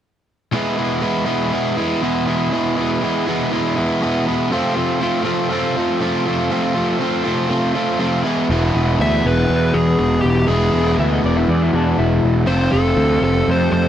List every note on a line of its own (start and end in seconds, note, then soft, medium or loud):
0.52 1.28 E2 medium
0.52 1.02 B2 medium
0.52 0.79 E3 medium
0.52 0.77 G#3 medium
0.52 0.77 B3 medium
0.52 0.76 E4 medium
0.76 1.00 E3 soft
0.76 1.01 G#3 medium
0.76 1.02 B3 medium
0.76 1.03 E4 medium
1.01 1.27 E3 medium
1.01 1.26 G#3 medium
1.01 1.26 B3 medium
1.01 1.25 E4 medium
1.26 1.77 E2 medium
1.26 1.77 B2 medium
1.26 1.51 E3 medium
1.26 1.51 G#3 medium
1.26 1.52 B3 medium
1.26 1.53 E4 medium
1.52 1.78 E3 medium
1.52 1.78 G#3 medium
1.52 1.77 B3 medium
1.52 1.76 E4 medium
1.77 2.02 E3 soft
1.77 2.02 G#3 medium
1.77 2.02 B3 medium
1.77 2.03 E4 medium
2.02 2.50 E2 medium
2.02 2.51 B2 medium
2.02 2.28 E3 medium
2.02 2.27 G#3 medium
2.02 2.26 B3 medium
2.02 2.25 E4 medium
2.27 2.51 E3 medium
2.27 2.52 G#3 soft
2.27 2.52 B3 medium
2.27 2.53 E4 medium
2.51 3.01 E2 medium
2.51 3.02 B2 medium
2.51 2.78 E3 medium
2.51 2.77 G#3 medium
2.51 2.76 B3 medium
2.51 2.75 E4 medium
2.76 3.00 E3 soft
2.76 3.01 G#3 soft
2.76 3.02 B3 medium
2.76 3.03 E4 medium
3.01 3.28 E3 medium
3.01 3.27 G#3 medium
3.01 3.27 B3 medium
3.01 3.26 E4 medium
3.27 3.78 E2 medium
3.27 3.78 B2 medium
3.27 3.51 E3 medium
3.27 3.51 G#3 medium
3.27 3.52 B3 medium
3.27 3.53 E4 medium
3.52 3.78 E3 medium
3.52 3.77 G#3 medium
3.52 3.76 B3 medium
3.52 3.75 E4 medium
3.76 4.01 E3 soft
3.76 4.01 G#3 medium
3.76 4.01 B3 medium
3.76 4.02 E4 medium
4.00 4.49 E2 medium
4.00 4.50 B2 medium
4.00 4.28 E3 medium
4.00 4.27 G#3 medium
4.00 4.26 B3 medium
4.00 4.25 E4 medium
4.26 4.51 E3 soft
4.26 4.51 G#3 medium
4.26 4.50 B3 medium
4.26 4.50 E4 medium
4.50 5.27 F2 medium
4.50 5.01 C3 medium
4.50 4.78 F3 medium
4.50 4.77 A3 medium
4.50 4.77 C4 medium
4.50 4.75 F4 medium
4.76 5.00 F3 soft
4.76 5.01 A3 medium
4.76 5.02 C4 medium
4.76 5.03 F4 medium
5.00 5.25 F3 medium
5.00 5.24 A3 medium
5.00 5.24 C4 medium
5.00 5.23 F4 medium
5.24 5.76 F2 medium
5.24 5.76 C3 medium
5.24 5.49 F3 medium
5.24 5.50 A3 medium
5.24 5.51 C4 medium
5.24 5.51 F4 medium
5.50 5.78 F3 medium
5.50 5.77 A3 medium
5.50 5.77 C4 medium
5.50 5.76 F4 medium
5.77 6.00 F3 medium
5.77 6.01 A3 medium
5.77 6.02 C4 medium
5.77 6.02 F4 medium
6.01 6.49 F2 medium
6.01 6.50 C3 medium
6.01 6.27 F3 medium
6.01 6.27 A3 medium
6.01 6.26 C4 medium
6.01 6.25 F4 medium
6.26 6.50 F3 medium
6.26 6.50 A3 medium
6.26 6.51 C4 medium
6.26 6.52 F4 medium
6.50 7.00 F2 medium
6.50 7.01 C3 medium
6.50 6.76 F3 medium
6.50 6.76 A3 medium
6.50 6.75 C4 medium
6.50 6.73 F4 medium
6.74 6.98 F3 medium
6.74 6.99 A3 medium
6.74 7.00 C4 medium
6.74 7.01 F4 medium
6.99 7.24 F3 medium
6.99 7.24 A3 medium
6.99 7.23 C4 medium
6.99 7.23 F4 medium
7.24 7.76 F2 medium
7.24 7.75 C3 medium
7.24 7.47 F3 medium
7.24 7.48 A3 medium
7.24 7.49 C4 medium
7.24 7.50 F4 medium
7.48 7.75 F3 medium
7.48 7.74 A3 medium
7.48 7.74 C4 medium
7.48 7.73 F4 medium
7.74 7.99 F3 medium
7.74 7.99 A3 medium
7.74 8.00 C4 medium
7.74 8.00 F4 medium
7.98 8.22 F2 medium
7.98 8.23 C3 medium
7.98 8.23 F3 medium
7.98 8.23 A3 medium
7.98 8.24 C4 medium
7.98 8.23 F4 medium
8.23 8.48 E2 medium
8.23 8.49 B2 medium
8.23 8.48 E3 medium
8.23 8.48 G#3 medium
8.23 8.48 B3 medium
8.23 8.47 E4 medium
8.49 8.70 E1 medium
8.49 10.46 E2 medium
8.49 10.47 B2 medium
8.49 10.48 E3 medium
8.49 10.48 G#3 medium
8.49 10.48 B3 medium
8.49 10.48 E4 medium
8.75 8.95 E1 medium
8.99 9.20 D2 medium
8.99 9.26 E5 loud
9.24 9.45 E1 medium
9.24 9.76 B4 medium
9.49 9.70 E2 medium
9.74 9.94 E2 medium
9.74 9.98 G#4 medium
9.99 10.19 E1 medium
9.99 10.21 G#4 medium
10.22 10.44 E1 medium
10.22 10.48 G4 medium
10.47 10.69 E1 medium
10.47 12.45 E2 medium
10.47 12.45 B2 medium
10.47 12.46 E3 medium
10.47 12.46 G#3 medium
10.47 12.46 B3 medium
10.47 12.47 E4 medium
10.47 10.94 G#4 medium
10.74 10.94 E1 medium
10.98 11.19 D2 medium
10.98 11.11 E5 medium
11.13 11.24 D#5 medium
11.24 11.44 E1 medium
11.24 11.36 D5 medium
11.37 11.48 E4 medium
11.48 11.69 E2 medium
11.48 11.61 D5 medium
11.63 11.74 E4 medium
11.73 11.94 E2 medium
11.73 11.98 D4 medium
11.98 12.18 E1 medium
11.98 12.34 E4 loud
12.23 12.43 E1 medium
12.46 12.67 F1 medium
12.46 13.88 F2 medium
12.46 13.88 C3 medium
12.46 13.88 F3 medium
12.46 13.88 A3 medium
12.46 13.88 C4 medium
12.46 13.88 F4 medium
12.46 12.72 C5 medium
12.72 12.93 F1 medium
12.72 13.23 A4 medium
12.96 13.17 D2 medium
13.22 13.42 F1 medium
13.22 13.48 A4 medium
13.48 13.68 F2 medium
13.48 13.72 C5 medium
13.72 13.88 F2 medium
13.72 13.88 C5 medium